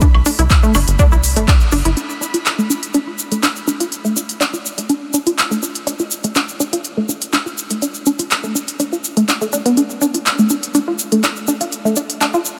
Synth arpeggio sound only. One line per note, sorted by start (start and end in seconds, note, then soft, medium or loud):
0.02 0.06 D4 medium
0.26 0.31 D4 loud
0.39 0.43 E4 medium
0.63 0.73 A3 medium
0.75 0.79 D4 medium
0.99 1.04 D4 loud
1.12 1.16 E4 medium
1.37 1.47 A3 medium
1.48 1.52 D4 medium
1.72 1.77 D4 loud
1.85 1.89 E4 medium
1.97 2.01 D4 medium
2.21 2.26 D4 loud
2.34 2.38 F4 medium
2.58 2.69 A3 medium
2.70 2.74 D4 medium
2.94 2.99 D4 loud
3.07 3.11 F4 medium
3.32 3.42 A3 medium
3.43 3.48 D4 medium
3.67 3.72 D4 medium
3.80 3.84 F4 medium
4.05 4.15 A3 medium
4.16 4.21 D4 medium
4.41 4.45 D4 loud
4.53 4.58 F4 medium
4.78 4.88 A3 medium
4.89 4.94 D4 medium
5.14 5.18 D4 loud
5.27 5.31 F4 medium
5.51 5.61 A3 medium
5.62 5.67 D4 medium
5.87 5.91 D4 loud
6.00 6.04 F4 medium
6.24 6.34 A3 medium
6.36 6.40 D4 medium
6.60 6.65 D4 medium
6.73 6.77 F4 medium
6.97 7.08 A3 medium
7.09 7.13 D4 medium
7.33 7.38 D4 loud
7.46 7.50 F4 medium
7.71 7.81 A3 medium
7.82 7.87 D4 medium
8.07 8.11 D4 loud
8.19 8.23 F4 medium
8.44 8.54 A3 medium
8.55 8.60 D4 medium
8.80 8.84 D4 medium
8.93 8.97 F4 medium
9.17 9.24 A3 medium
9.28 9.33 D4 medium
9.41 9.48 A3 loud
9.53 9.57 D4 medium
9.66 9.76 B3 medium
9.77 9.82 D4 medium
10.01 10.06 D4 loud
10.14 10.18 F4 medium
10.39 10.49 A3 medium
10.50 10.55 D4 medium
10.75 10.79 D4 loud
10.88 10.92 F4 medium
11.12 11.22 A3 medium
11.24 11.28 D4 medium
11.48 11.52 D4 medium
11.61 11.65 F4 medium
11.85 11.95 A3 medium
11.97 12.01 D4 medium
12.21 12.26 D4 loud
12.34 12.38 F4 medium